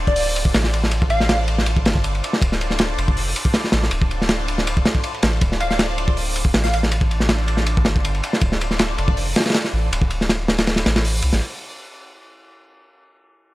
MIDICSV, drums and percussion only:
0, 0, Header, 1, 2, 480
1, 0, Start_track
1, 0, Key_signature, -1, "minor"
1, 0, Tempo, 375000
1, 1172, Time_signature, 4, 2, 24, 8
1, 17334, End_track
2, 0, Start_track
2, 0, Title_t, "Drums"
2, 94, Note_on_c, 9, 36, 91
2, 205, Note_on_c, 9, 46, 83
2, 222, Note_off_c, 9, 36, 0
2, 333, Note_off_c, 9, 46, 0
2, 461, Note_on_c, 9, 51, 70
2, 579, Note_on_c, 9, 36, 87
2, 589, Note_off_c, 9, 51, 0
2, 695, Note_on_c, 9, 51, 82
2, 697, Note_on_c, 9, 38, 116
2, 707, Note_off_c, 9, 36, 0
2, 817, Note_off_c, 9, 38, 0
2, 817, Note_on_c, 9, 38, 55
2, 823, Note_off_c, 9, 51, 0
2, 940, Note_on_c, 9, 51, 73
2, 945, Note_off_c, 9, 38, 0
2, 1068, Note_off_c, 9, 51, 0
2, 1069, Note_on_c, 9, 38, 51
2, 1168, Note_on_c, 9, 51, 84
2, 1197, Note_off_c, 9, 38, 0
2, 1296, Note_off_c, 9, 51, 0
2, 1304, Note_on_c, 9, 36, 100
2, 1405, Note_on_c, 9, 51, 73
2, 1432, Note_off_c, 9, 36, 0
2, 1533, Note_off_c, 9, 51, 0
2, 1541, Note_on_c, 9, 38, 51
2, 1651, Note_on_c, 9, 51, 87
2, 1654, Note_off_c, 9, 38, 0
2, 1654, Note_on_c, 9, 38, 127
2, 1779, Note_off_c, 9, 51, 0
2, 1782, Note_off_c, 9, 38, 0
2, 1890, Note_on_c, 9, 51, 68
2, 2018, Note_off_c, 9, 51, 0
2, 2027, Note_on_c, 9, 38, 54
2, 2127, Note_on_c, 9, 51, 81
2, 2155, Note_off_c, 9, 38, 0
2, 2255, Note_off_c, 9, 51, 0
2, 2259, Note_on_c, 9, 36, 102
2, 2373, Note_on_c, 9, 51, 70
2, 2382, Note_on_c, 9, 38, 127
2, 2387, Note_off_c, 9, 36, 0
2, 2501, Note_off_c, 9, 51, 0
2, 2501, Note_on_c, 9, 36, 101
2, 2510, Note_off_c, 9, 38, 0
2, 2611, Note_on_c, 9, 51, 91
2, 2629, Note_off_c, 9, 36, 0
2, 2739, Note_off_c, 9, 51, 0
2, 2750, Note_on_c, 9, 51, 44
2, 2865, Note_off_c, 9, 51, 0
2, 2865, Note_on_c, 9, 51, 65
2, 2986, Note_on_c, 9, 38, 54
2, 2993, Note_off_c, 9, 51, 0
2, 3092, Note_on_c, 9, 36, 121
2, 3098, Note_on_c, 9, 51, 97
2, 3114, Note_off_c, 9, 38, 0
2, 3220, Note_off_c, 9, 36, 0
2, 3226, Note_off_c, 9, 51, 0
2, 3228, Note_on_c, 9, 38, 54
2, 3341, Note_on_c, 9, 51, 66
2, 3356, Note_off_c, 9, 38, 0
2, 3461, Note_on_c, 9, 38, 36
2, 3469, Note_off_c, 9, 51, 0
2, 3565, Note_on_c, 9, 51, 83
2, 3582, Note_off_c, 9, 38, 0
2, 3582, Note_on_c, 9, 38, 115
2, 3693, Note_off_c, 9, 51, 0
2, 3710, Note_off_c, 9, 38, 0
2, 3819, Note_on_c, 9, 51, 75
2, 3944, Note_on_c, 9, 36, 104
2, 3947, Note_off_c, 9, 51, 0
2, 4056, Note_on_c, 9, 46, 80
2, 4072, Note_off_c, 9, 36, 0
2, 4184, Note_off_c, 9, 46, 0
2, 4298, Note_on_c, 9, 51, 70
2, 4418, Note_on_c, 9, 36, 98
2, 4426, Note_off_c, 9, 51, 0
2, 4527, Note_on_c, 9, 38, 107
2, 4532, Note_on_c, 9, 51, 94
2, 4546, Note_off_c, 9, 36, 0
2, 4655, Note_off_c, 9, 38, 0
2, 4660, Note_off_c, 9, 51, 0
2, 4662, Note_on_c, 9, 38, 56
2, 4762, Note_off_c, 9, 38, 0
2, 4762, Note_on_c, 9, 38, 109
2, 4769, Note_on_c, 9, 51, 74
2, 4890, Note_off_c, 9, 38, 0
2, 4897, Note_off_c, 9, 51, 0
2, 4902, Note_on_c, 9, 38, 54
2, 5004, Note_on_c, 9, 51, 90
2, 5030, Note_off_c, 9, 38, 0
2, 5132, Note_off_c, 9, 51, 0
2, 5139, Note_on_c, 9, 36, 97
2, 5260, Note_on_c, 9, 51, 65
2, 5267, Note_off_c, 9, 36, 0
2, 5388, Note_off_c, 9, 51, 0
2, 5396, Note_on_c, 9, 38, 49
2, 5488, Note_on_c, 9, 51, 87
2, 5492, Note_off_c, 9, 38, 0
2, 5492, Note_on_c, 9, 38, 111
2, 5616, Note_off_c, 9, 51, 0
2, 5620, Note_off_c, 9, 38, 0
2, 5736, Note_on_c, 9, 51, 71
2, 5864, Note_off_c, 9, 51, 0
2, 5864, Note_on_c, 9, 38, 49
2, 5977, Note_on_c, 9, 51, 97
2, 5992, Note_off_c, 9, 38, 0
2, 6104, Note_on_c, 9, 36, 102
2, 6105, Note_off_c, 9, 51, 0
2, 6214, Note_on_c, 9, 38, 121
2, 6216, Note_on_c, 9, 51, 65
2, 6232, Note_off_c, 9, 36, 0
2, 6332, Note_on_c, 9, 36, 102
2, 6342, Note_off_c, 9, 38, 0
2, 6344, Note_off_c, 9, 51, 0
2, 6446, Note_on_c, 9, 51, 89
2, 6460, Note_off_c, 9, 36, 0
2, 6574, Note_off_c, 9, 51, 0
2, 6584, Note_on_c, 9, 51, 42
2, 6689, Note_off_c, 9, 51, 0
2, 6689, Note_on_c, 9, 51, 82
2, 6697, Note_on_c, 9, 38, 112
2, 6817, Note_off_c, 9, 51, 0
2, 6825, Note_off_c, 9, 38, 0
2, 6928, Note_on_c, 9, 51, 89
2, 6932, Note_on_c, 9, 36, 117
2, 7056, Note_off_c, 9, 51, 0
2, 7060, Note_off_c, 9, 36, 0
2, 7064, Note_on_c, 9, 38, 51
2, 7172, Note_on_c, 9, 51, 72
2, 7192, Note_off_c, 9, 38, 0
2, 7300, Note_off_c, 9, 51, 0
2, 7304, Note_on_c, 9, 38, 38
2, 7413, Note_on_c, 9, 51, 89
2, 7414, Note_off_c, 9, 38, 0
2, 7414, Note_on_c, 9, 38, 119
2, 7541, Note_off_c, 9, 51, 0
2, 7542, Note_off_c, 9, 38, 0
2, 7653, Note_on_c, 9, 51, 66
2, 7780, Note_on_c, 9, 36, 99
2, 7781, Note_off_c, 9, 51, 0
2, 7898, Note_on_c, 9, 46, 77
2, 7908, Note_off_c, 9, 36, 0
2, 8026, Note_off_c, 9, 46, 0
2, 8136, Note_on_c, 9, 51, 65
2, 8254, Note_on_c, 9, 36, 92
2, 8264, Note_off_c, 9, 51, 0
2, 8372, Note_on_c, 9, 38, 122
2, 8374, Note_on_c, 9, 51, 89
2, 8382, Note_off_c, 9, 36, 0
2, 8500, Note_off_c, 9, 38, 0
2, 8502, Note_off_c, 9, 51, 0
2, 8503, Note_on_c, 9, 38, 56
2, 8621, Note_on_c, 9, 51, 66
2, 8631, Note_off_c, 9, 38, 0
2, 8745, Note_on_c, 9, 38, 53
2, 8749, Note_off_c, 9, 51, 0
2, 8851, Note_on_c, 9, 51, 88
2, 8873, Note_off_c, 9, 38, 0
2, 8975, Note_on_c, 9, 36, 92
2, 8979, Note_off_c, 9, 51, 0
2, 9101, Note_on_c, 9, 51, 66
2, 9103, Note_off_c, 9, 36, 0
2, 9220, Note_on_c, 9, 38, 50
2, 9229, Note_off_c, 9, 51, 0
2, 9329, Note_on_c, 9, 51, 94
2, 9330, Note_off_c, 9, 38, 0
2, 9330, Note_on_c, 9, 38, 110
2, 9457, Note_off_c, 9, 51, 0
2, 9458, Note_off_c, 9, 38, 0
2, 9572, Note_on_c, 9, 51, 63
2, 9691, Note_on_c, 9, 38, 47
2, 9700, Note_off_c, 9, 51, 0
2, 9810, Note_on_c, 9, 51, 87
2, 9819, Note_off_c, 9, 38, 0
2, 9938, Note_off_c, 9, 51, 0
2, 9949, Note_on_c, 9, 36, 103
2, 10046, Note_on_c, 9, 38, 110
2, 10055, Note_on_c, 9, 51, 69
2, 10077, Note_off_c, 9, 36, 0
2, 10174, Note_off_c, 9, 38, 0
2, 10183, Note_off_c, 9, 51, 0
2, 10186, Note_on_c, 9, 36, 107
2, 10300, Note_on_c, 9, 51, 100
2, 10314, Note_off_c, 9, 36, 0
2, 10426, Note_off_c, 9, 51, 0
2, 10426, Note_on_c, 9, 51, 48
2, 10540, Note_off_c, 9, 51, 0
2, 10540, Note_on_c, 9, 51, 70
2, 10665, Note_on_c, 9, 38, 57
2, 10668, Note_off_c, 9, 51, 0
2, 10768, Note_on_c, 9, 51, 85
2, 10773, Note_on_c, 9, 36, 110
2, 10793, Note_off_c, 9, 38, 0
2, 10896, Note_off_c, 9, 51, 0
2, 10901, Note_off_c, 9, 36, 0
2, 10905, Note_on_c, 9, 38, 56
2, 11024, Note_on_c, 9, 51, 76
2, 11033, Note_off_c, 9, 38, 0
2, 11145, Note_on_c, 9, 38, 40
2, 11152, Note_off_c, 9, 51, 0
2, 11254, Note_on_c, 9, 51, 91
2, 11260, Note_off_c, 9, 38, 0
2, 11260, Note_on_c, 9, 38, 110
2, 11382, Note_off_c, 9, 51, 0
2, 11388, Note_off_c, 9, 38, 0
2, 11498, Note_on_c, 9, 51, 65
2, 11622, Note_on_c, 9, 36, 101
2, 11626, Note_off_c, 9, 51, 0
2, 11738, Note_on_c, 9, 46, 74
2, 11750, Note_off_c, 9, 36, 0
2, 11866, Note_off_c, 9, 46, 0
2, 11979, Note_on_c, 9, 51, 74
2, 11984, Note_on_c, 9, 38, 95
2, 12034, Note_off_c, 9, 38, 0
2, 12034, Note_on_c, 9, 38, 87
2, 12038, Note_off_c, 9, 51, 0
2, 12038, Note_on_c, 9, 51, 67
2, 12104, Note_off_c, 9, 51, 0
2, 12104, Note_on_c, 9, 51, 70
2, 12106, Note_off_c, 9, 38, 0
2, 12106, Note_on_c, 9, 38, 86
2, 12157, Note_off_c, 9, 51, 0
2, 12157, Note_on_c, 9, 51, 71
2, 12162, Note_off_c, 9, 38, 0
2, 12162, Note_on_c, 9, 38, 93
2, 12215, Note_off_c, 9, 51, 0
2, 12215, Note_on_c, 9, 51, 83
2, 12219, Note_off_c, 9, 38, 0
2, 12219, Note_on_c, 9, 38, 116
2, 12343, Note_off_c, 9, 51, 0
2, 12345, Note_off_c, 9, 38, 0
2, 12345, Note_on_c, 9, 38, 55
2, 12473, Note_off_c, 9, 38, 0
2, 12706, Note_on_c, 9, 51, 92
2, 12820, Note_on_c, 9, 36, 96
2, 12834, Note_off_c, 9, 51, 0
2, 12933, Note_on_c, 9, 51, 75
2, 12948, Note_off_c, 9, 36, 0
2, 13061, Note_off_c, 9, 51, 0
2, 13070, Note_on_c, 9, 38, 50
2, 13177, Note_off_c, 9, 38, 0
2, 13177, Note_on_c, 9, 38, 110
2, 13182, Note_on_c, 9, 51, 97
2, 13305, Note_off_c, 9, 38, 0
2, 13310, Note_off_c, 9, 51, 0
2, 13419, Note_on_c, 9, 38, 110
2, 13435, Note_on_c, 9, 51, 88
2, 13547, Note_off_c, 9, 38, 0
2, 13547, Note_off_c, 9, 51, 0
2, 13547, Note_on_c, 9, 51, 82
2, 13551, Note_on_c, 9, 38, 108
2, 13659, Note_off_c, 9, 51, 0
2, 13659, Note_on_c, 9, 51, 86
2, 13663, Note_off_c, 9, 38, 0
2, 13663, Note_on_c, 9, 38, 105
2, 13774, Note_off_c, 9, 38, 0
2, 13774, Note_on_c, 9, 38, 95
2, 13787, Note_off_c, 9, 51, 0
2, 13796, Note_on_c, 9, 51, 81
2, 13900, Note_off_c, 9, 38, 0
2, 13900, Note_on_c, 9, 38, 107
2, 13901, Note_off_c, 9, 51, 0
2, 13901, Note_on_c, 9, 51, 81
2, 14026, Note_off_c, 9, 51, 0
2, 14026, Note_on_c, 9, 51, 76
2, 14028, Note_off_c, 9, 38, 0
2, 14028, Note_on_c, 9, 38, 113
2, 14141, Note_on_c, 9, 46, 77
2, 14154, Note_off_c, 9, 51, 0
2, 14156, Note_off_c, 9, 38, 0
2, 14269, Note_off_c, 9, 46, 0
2, 14366, Note_on_c, 9, 51, 68
2, 14494, Note_off_c, 9, 51, 0
2, 14497, Note_on_c, 9, 38, 53
2, 14625, Note_off_c, 9, 38, 0
2, 17334, End_track
0, 0, End_of_file